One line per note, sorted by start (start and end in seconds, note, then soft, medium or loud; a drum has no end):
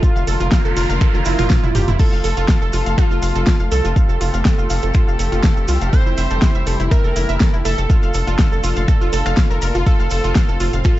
0.00 1.98 D3 medium
0.00 5.89 F3 medium
0.00 1.98 A#3 medium
0.00 1.90 F4 loud
0.00 0.14 F4 medium
0.00 5.89 F4 medium
0.00 1.98 A#4 medium
0.00 kick loud
0.00 closed hi-hat medium
0.00 noise sweep medium
0.00 cabasa soft
0.16 0.25 F1 medium
0.16 0.25 F5 medium
0.16 cabasa soft
0.27 0.37 F1 loud
0.27 0.38 A4 medium
0.27 open hi-hat loud
0.27 cabasa medium
0.40 0.49 F1 medium
0.40 0.50 F4 medium
0.40 closed hi-hat medium
0.40 cabasa soft
0.52 0.63 F5 medium
0.52 kick loud
0.52 snare loud
0.52 closed hi-hat medium
0.52 cabasa soft
0.65 0.74 F1 medium
0.65 0.75 A4 medium
0.65 cabasa soft
0.76 0.86 F1 loud
0.76 0.87 F4 medium
0.76 open hi-hat loud
0.76 cabasa medium
0.90 0.98 F1 medium
0.90 0.99 F5 medium
0.90 closed hi-hat medium
0.90 cabasa soft
1.01 1.12 A4 medium
1.01 finger snap medium
1.01 kick loud
1.01 closed hi-hat medium
1.01 high tom medium
1.01 cabasa soft
1.14 1.23 F1 medium
1.14 1.24 F4 medium
1.14 high tom medium
1.14 cabasa soft
1.25 1.36 F1 loud
1.25 1.37 E4 loud
1.25 open hi-hat loud
1.25 cabasa medium
1.38 1.48 F1 medium
1.38 1.45 F4 loud
1.38 finger snap medium
1.38 open hi-hat medium
1.38 mid tom medium
1.38 cabasa soft
1.50 1.58 F4 medium
1.50 kick loud
1.50 snare loud
1.50 closed hi-hat medium
1.50 mid tom medium
1.50 cabasa medium
1.63 1.72 F1 medium
1.63 1.67 E4 medium
1.63 mid tom medium
1.63 cabasa soft
1.75 1.85 F1 loud
1.75 1.79 G4 medium
1.75 mid tom loud
1.75 open hi-hat loud
1.75 cabasa medium
1.88 1.97 F1 medium
1.88 1.94 E4 medium
1.88 closed hi-hat medium
1.88 mid tom medium
1.88 cabasa soft
1.99 7.86 C3 medium
1.99 5.89 A3 medium
1.99 2.10 F4 medium
1.99 2.99 A4 loud
1.99 3.94 A4 medium
1.99 kick loud
1.99 closed hi-hat medium
1.99 crash medium
1.99 cabasa medium
2.12 2.21 F1 medium
2.12 2.22 F5 medium
2.12 cabasa soft
2.24 2.34 F1 loud
2.24 2.35 A4 medium
2.24 open hi-hat loud
2.24 cabasa medium
2.37 2.46 F1 medium
2.37 2.47 F4 medium
2.37 closed hi-hat medium
2.37 cabasa soft
2.48 2.59 F5 medium
2.48 kick loud
2.48 snare loud
2.48 closed hi-hat medium
2.48 cabasa medium
2.62 2.70 F1 medium
2.62 2.71 A4 medium
2.62 cabasa soft
2.73 2.83 F1 loud
2.73 2.84 F4 medium
2.73 open hi-hat loud
2.73 cabasa medium
2.86 2.95 F1 medium
2.86 2.96 F5 medium
2.86 closed hi-hat medium
2.86 cabasa soft
2.98 3.62 F4 loud
2.98 3.09 A4 medium
2.98 finger snap medium
2.98 kick loud
2.98 closed hi-hat medium
2.98 cabasa medium
3.11 3.20 F1 medium
3.11 3.20 F4 medium
3.11 cabasa soft
3.22 3.32 F1 loud
3.22 3.33 F5 medium
3.22 open hi-hat loud
3.22 cabasa loud
3.35 3.44 F1 medium
3.35 3.45 A4 medium
3.35 closed hi-hat medium
3.35 cabasa soft
3.46 3.58 F4 medium
3.46 kick loud
3.46 snare loud
3.46 closed hi-hat medium
3.46 cabasa medium
3.60 3.69 F1 medium
3.60 3.70 F5 medium
3.60 cabasa soft
3.72 3.81 C2 loud
3.72 5.94 A4 loud
3.72 3.82 A4 medium
3.72 open hi-hat loud
3.72 cabasa medium
3.85 3.93 F1 medium
3.85 3.94 F4 medium
3.85 closed hi-hat medium
3.85 cabasa soft
3.96 7.86 G4 medium
3.96 4.07 F5 medium
3.96 kick loud
3.96 closed hi-hat medium
3.96 cabasa medium
4.09 4.18 F1 medium
4.09 4.19 A4 medium
4.09 cabasa soft
4.21 4.31 F1 loud
4.21 4.32 F4 medium
4.21 open hi-hat loud
4.21 cabasa loud
4.34 4.43 F1 medium
4.34 4.43 F5 medium
4.34 closed hi-hat medium
4.34 cabasa soft
4.45 4.56 A4 medium
4.45 kick loud
4.45 snare loud
4.45 closed hi-hat medium
4.45 cabasa medium
4.58 4.67 F1 medium
4.58 4.68 F4 medium
4.58 cabasa soft
4.70 4.80 F1 loud
4.70 4.81 F5 medium
4.70 open hi-hat loud
4.70 cabasa medium
4.82 4.92 F1 medium
4.82 4.93 A4 medium
4.82 closed hi-hat medium
4.82 cabasa soft
4.94 5.05 F4 medium
4.94 finger snap medium
4.94 kick loud
4.94 closed hi-hat medium
4.94 cabasa medium
5.08 5.16 F1 medium
5.08 5.17 F5 medium
5.08 cabasa soft
5.19 5.29 F1 loud
5.19 5.30 A4 medium
5.19 open hi-hat loud
5.19 cabasa medium
5.32 5.41 F1 medium
5.32 5.42 F4 medium
5.32 closed hi-hat medium
5.32 cabasa soft
5.43 5.55 F5 medium
5.43 kick loud
5.43 snare loud
5.43 closed hi-hat medium
5.43 cabasa medium
5.57 5.66 F1 medium
5.57 5.66 A4 medium
5.57 cabasa soft
5.68 5.78 C2 loud
5.68 5.79 F4 medium
5.68 open hi-hat loud
5.68 cabasa loud
5.81 5.90 F1 loud
5.81 5.91 F5 medium
5.81 closed hi-hat medium
5.81 cabasa soft
5.93 7.88 E3 medium
5.93 7.88 G3 medium
5.93 7.88 E4 medium
5.93 6.04 A4 medium
5.93 6.82 C5 loud
5.93 kick loud
5.93 closed hi-hat soft
5.93 cabasa medium
6.06 6.15 F1 medium
6.06 6.16 E4 medium
6.06 cabasa soft
6.17 6.27 F1 loud
6.17 6.28 E5 medium
6.17 open hi-hat loud
6.17 cabasa loud
6.30 6.39 F1 medium
6.30 6.40 A4 medium
6.30 closed hi-hat medium
6.30 cabasa soft
6.42 6.53 E4 medium
6.42 kick loud
6.42 snare loud
6.42 closed hi-hat medium
6.42 cabasa medium
6.55 6.64 F1 medium
6.55 6.65 E5 medium
6.55 cabasa soft
6.67 6.76 F1 loud
6.67 6.78 A4 medium
6.67 open hi-hat loud
6.67 cabasa medium
6.80 6.88 F1 medium
6.80 6.89 E4 medium
6.80 closed hi-hat medium
6.80 cabasa soft
6.91 7.56 A#4 loud
6.91 7.02 E5 medium
6.91 finger snap medium
6.91 kick loud
6.91 closed hi-hat medium
6.91 cabasa medium
7.04 7.13 F1 medium
7.04 7.14 A4 medium
7.04 cabasa soft
7.16 7.26 F1 loud
7.16 7.27 E4 medium
7.16 open hi-hat loud
7.16 cabasa medium
7.29 7.38 F1 medium
7.29 7.39 E5 medium
7.29 closed hi-hat medium
7.29 cabasa soft
7.40 7.51 A4 medium
7.40 kick loud
7.40 snare loud
7.40 closed hi-hat medium
7.40 cabasa medium
7.54 7.62 F1 medium
7.54 7.63 E4 medium
7.54 cabasa soft
7.65 7.75 F1 loud
7.65 9.77 A4 loud
7.65 7.76 E5 medium
7.65 open hi-hat loud
7.65 cabasa loud
7.78 7.87 F1 medium
7.78 7.88 A4 medium
7.78 closed hi-hat medium
7.78 cabasa soft
7.90 9.85 A#2 medium
7.90 9.85 D3 medium
7.90 9.85 F3 medium
7.90 9.85 D4 medium
7.90 8.01 F4 medium
7.90 10.99 F4 medium
7.90 kick loud
7.90 closed hi-hat soft
7.90 cabasa medium
8.03 8.11 F1 medium
8.03 8.12 F5 medium
8.03 cabasa soft
8.14 8.24 F1 loud
8.14 8.25 A4 medium
8.14 open hi-hat loud
8.14 cabasa loud
8.27 8.36 F1 medium
8.27 8.37 F4 medium
8.27 closed hi-hat medium
8.27 cabasa soft
8.39 8.50 F5 medium
8.39 kick loud
8.39 snare loud
8.39 closed hi-hat soft
8.39 cabasa medium
8.52 8.61 F1 medium
8.52 8.62 A4 medium
8.52 cabasa soft
8.63 8.73 F1 loud
8.63 8.74 F4 medium
8.63 open hi-hat loud
8.63 cabasa loud
8.76 8.85 F1 medium
8.76 8.86 F5 medium
8.76 closed hi-hat medium
8.76 cabasa soft
8.88 8.99 A4 medium
8.88 finger snap medium
8.88 kick loud
8.88 closed hi-hat medium
8.88 cabasa medium
9.01 9.10 F1 medium
9.01 9.11 F4 medium
9.01 cabasa soft
9.13 9.23 F1 loud
9.13 9.20 A4 loud
9.13 open hi-hat loud
9.13 cabasa loud
9.26 9.34 F1 medium
9.26 9.30 F5 loud
9.26 finger snap medium
9.26 closed hi-hat medium
9.26 cabasa soft
9.37 9.44 F5 medium
9.37 kick loud
9.37 snare loud
9.37 closed hi-hat medium
9.37 cabasa medium
9.50 9.59 F1 medium
9.50 9.54 A#4 medium
9.50 cabasa soft
9.62 9.72 F1 loud
9.62 9.69 A#4 medium
9.62 open hi-hat loud
9.62 cabasa loud
9.75 9.84 F1 loud
9.75 9.81 F4 loud
9.75 closed hi-hat medium
9.75 cabasa soft
9.86 10.99 A2 medium
9.86 10.99 C3 medium
9.86 10.99 F3 medium
9.86 10.99 C4 medium
9.86 9.97 F4 medium
9.86 10.76 A4 loud
9.86 kick loud
9.86 closed hi-hat soft
9.86 cabasa soft
10.00 10.08 F1 medium
10.00 10.09 F5 medium
10.00 cabasa soft
10.10 10.21 F1 loud
10.10 10.22 A4 medium
10.10 open hi-hat loud
10.10 cabasa medium
10.24 10.33 F1 medium
10.24 10.34 F4 medium
10.24 closed hi-hat medium
10.24 cabasa soft
10.35 10.46 F5 medium
10.35 kick loud
10.35 snare loud
10.35 closed hi-hat medium
10.35 cabasa medium
10.49 10.57 F1 medium
10.49 10.58 A4 medium
10.49 cabasa soft
10.60 10.70 F1 loud
10.60 10.71 F4 medium
10.60 open hi-hat loud
10.60 cabasa medium
10.73 10.82 F1 medium
10.73 10.83 F5 medium
10.73 closed hi-hat medium
10.73 cabasa soft
10.84 10.99 F4 loud
10.84 10.96 A4 medium
10.84 finger snap medium
10.84 kick loud
10.84 closed hi-hat soft
10.84 cabasa medium